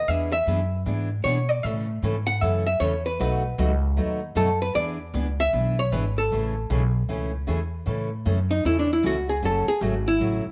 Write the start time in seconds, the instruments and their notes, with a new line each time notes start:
0.08 upright bass E2, steel-string acoustic guitar E3 B3 D4 G#4, hollow-body jazz guitar E5
0.32 hollow-body jazz guitar E5
0.47 upright bass F#2, steel-string acoustic guitar E3 B3 D4 G#4
0.86 upright bass G#2, steel-string acoustic guitar E3 B3 D4 G#4
1.24 upright bass B2, steel-string acoustic guitar E3 B3 D4 G#4, hollow-body jazz guitar C#5
1.49 hollow-body jazz guitar D5
1.63 upright bass A2, steel-string acoustic guitar C#3 E3 A3 C#4 A4, hollow-body jazz guitar E5
2.02 upright bass G#2, steel-string acoustic guitar C#3 E3 A3 C#4 A4
2.27 hollow-body jazz guitar F#5
2.41 upright bass F#2, steel-string acoustic guitar C#3 E3 A3 C#4 A4, hollow-body jazz guitar E5
2.67 hollow-body jazz guitar E5
2.80 upright bass E2, steel-string acoustic guitar C#3 E3 A3 C#4 A4, hollow-body jazz guitar C#5
3.06 hollow-body jazz guitar B4
3.19 upright bass B1, steel-string acoustic guitar B2 F#3 A3 D#4 F#4, hollow-body jazz guitar B4
3.58 upright bass C#2, steel-string acoustic guitar B2 F#3 A3 D#4 F#4
3.96 upright bass D#2, steel-string acoustic guitar B2 F#3 A3 D#4 F#4
4.35 upright bass F#2, steel-string acoustic guitar B2 F#3 A3 D#4 F#4, hollow-body jazz guitar A4
4.62 hollow-body jazz guitar B4
4.74 upright bass E2, steel-string acoustic guitar E3 B3 D4 G#4, hollow-body jazz guitar D5
5.14 upright bass C#2, steel-string acoustic guitar E3 B3 D4 G#4
5.40 hollow-body jazz guitar E5
5.53 upright bass B1, steel-string acoustic guitar E3 B3 D4 G#4
5.79 hollow-body jazz guitar C#5
5.92 upright bass G#1, steel-string acoustic guitar E3 B3 D4 G#4, hollow-body jazz guitar B4
6.18 hollow-body jazz guitar A4
6.31 upright bass A1, steel-string acoustic guitar C#3 E3 A3 C#4 G#4
6.70 upright bass B1, steel-string acoustic guitar C#3 E3 A3 C#4 G#4
7.09 upright bass C#2, steel-string acoustic guitar C#3 E3 A3 C#4 G#4
7.47 upright bass E2, steel-string acoustic guitar C#3 E3 A3 C#4 G#4
7.86 upright bass A2, steel-string acoustic guitar C#3 E3 A3 C#4 A4
8.25 upright bass F#2, steel-string acoustic guitar C#3 E3 A3 C#4 A4
8.51 hollow-body jazz guitar D#4
8.65 upright bass E2, steel-string acoustic guitar C#3 E3 A3 C#4 A4, hollow-body jazz guitar E4
8.79 hollow-body jazz guitar D4
8.93 hollow-body jazz guitar E4
9.03 upright bass C#2, steel-string acoustic guitar C#3 E3 A3 C#4 A4, hollow-body jazz guitar F#4
9.29 hollow-body jazz guitar G#4
9.42 upright bass F#1, steel-string acoustic guitar C#3 F#3 A3 C#4 F#4, hollow-body jazz guitar A4
9.68 hollow-body jazz guitar G#4, muted upright bass stroke
9.81 upright bass G#1, steel-string acoustic guitar C#3 F#3 A3 C#4 F#4, hollow-body jazz guitar F#4
10.08 hollow-body jazz guitar E4
10.20 upright bass A1, steel-string acoustic guitar C#3 F#3 A3 C#4 F#4
10.46 muted upright bass stroke